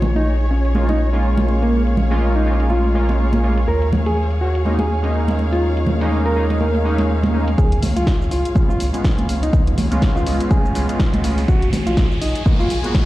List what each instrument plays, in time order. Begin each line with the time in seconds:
Already playing: analog synth bass A#1, string section G#4 C#5
0.02 high conga, low conga
0.16 hollow-body jazz guitar D#4, closed hi-hat
0.40 closed hi-hat
0.51 hollow-body jazz guitar C#4
0.65 closed hi-hat
0.75 synth keys G#3 A#3 C#4 F4, high conga
0.89 hollow-body jazz guitar D#4, closed hi-hat, muted conga
1.12 synth keys G#3 A#3 C#4 F4, closed hi-hat
1.38 string section F5, closed hi-hat, muted conga, high conga
1.48 muted conga
1.62 hollow-body jazz guitar A#3, closed hi-hat
1.87 closed hi-hat
1.97 high conga, low conga
2.11 synth keys G#3 A#3 C#4 F4, closed hi-hat
2.36 hollow-body jazz guitar D#4, closed hi-hat
2.45 synth keys G#3 A#3 C#4 F4
2.60 closed hi-hat
2.70 hollow-body jazz guitar F4, high conga
2.84 closed hi-hat
2.94 synth keys G#3 A#3 C#4 F4
3.09 closed hi-hat, muted conga
3.33 closed hi-hat, muted conga, high conga
3.43 synth keys G#3 A#3 C#4 F4
3.58 closed hi-hat
3.68 analog synth bass D#2, hollow-body jazz guitar A#4
3.82 closed hi-hat
3.92 high conga, low conga
4.06 hollow-body jazz guitar G#4, closed hi-hat
4.31 closed hi-hat
4.41 hollow-body jazz guitar F#4
4.55 closed hi-hat
4.65 synth keys G#3 A#3 C#4 D#4, high conga
4.79 hollow-body jazz guitar G#4, closed hi-hat, muted conga
5.03 synth keys G#3 A#3 C#4 D#4, closed hi-hat
5.28 closed hi-hat, muted conga, high conga
5.39 muted conga
5.53 hollow-body jazz guitar F4, closed hi-hat
5.77 closed hi-hat
5.87 high conga, low conga
6.01 synth keys G#3 A#3 C#4 D#4, closed hi-hat
6.26 hollow-body jazz guitar A#4, closed hi-hat
6.36 synth keys G#3 A#3 C#4 D#4
6.50 closed hi-hat, muted conga
6.61 hollow-body jazz guitar A#4, high conga
6.75 closed hi-hat
6.84 synth keys G#3 A#3 C#4 D#4
6.98 closed hi-hat, muted conga
7.23 closed hi-hat, muted conga, high conga
7.33 synth keys G#3 A#3 C#4 D#4
7.48 closed hi-hat
7.58 analog synth bass C#2, hollow-body jazz guitar G#4, kick, riser, shaker
7.72 closed hi-hat
7.83 open hi-hat, high conga, low conga, shaker
7.96 analog synth bass C#2, hollow-body jazz guitar F4, closed hi-hat, shaker
8.07 kick, snare, shaker
8.21 shaker
8.31 analog synth bass C#2, hollow-body jazz guitar F4, open hi-hat, shaker
8.45 closed hi-hat, shaker
8.55 synth keys G#3 B3 C#4 F4, kick, high conga, shaker
8.69 hollow-body jazz guitar F4, shaker
8.80 analog synth bass C#2, open hi-hat, shaker
8.93 synth keys G#3 B3 C#4 F4, closed hi-hat, shaker
9.04 kick, snare, open hi-hat, shaker
9.18 analog synth bass C#2, closed hi-hat, high conga
9.29 open hi-hat, shaker
9.43 hollow-body jazz guitar D#4, closed hi-hat, shaker
9.53 analog synth bass C#2, kick, shaker
9.67 closed hi-hat
9.78 open hi-hat, high conga, low conga, shaker
9.91 analog synth bass C#2, synth keys G#3 B3 C#4 F4, closed hi-hat, shaker
10.02 kick, snare, shaker
10.16 hollow-body jazz guitar F4, shaker
10.26 analog synth bass C#2, synth keys G#3 B3 C#4 F4, open hi-hat, shaker
10.40 closed hi-hat, shaker
10.51 hollow-body jazz guitar G#4, kick, high conga, shaker
10.65 shaker
10.75 analog synth bass C#2, synth keys G#3 B3 C#4 F4, open hi-hat, shaker
10.89 closed hi-hat, shaker
11.00 kick, snare, shaker
11.13 analog synth bass C#2, closed hi-hat, high conga
11.23 synth keys G#3 B3 C#4 F4, open hi-hat, shaker
11.38 open hi-hat, shaker
11.48 analog synth bass B1, hollow-body jazz guitar F#4, string section G#4, kick, shaker
11.62 closed hi-hat
11.73 open hi-hat, high conga, low conga, shaker
11.87 analog synth bass B1, hollow-body jazz guitar F4, closed hi-hat, shaker
11.97 kick, snare, shaker
12.12 string section G#5, shaker
12.21 analog synth bass B1, hollow-body jazz guitar D#4, open hi-hat, shaker
12.35 closed hi-hat, shaker
12.45 synth keys G#3 A#3 B3 F#4, kick, high conga, shaker
12.60 hollow-body jazz guitar F4, shaker
12.70 analog synth bass B1, open hi-hat, shaker
12.83 synth keys G#3 A#3 B3 F#4, closed hi-hat, shaker
12.95 kick, snare, open hi-hat, shaker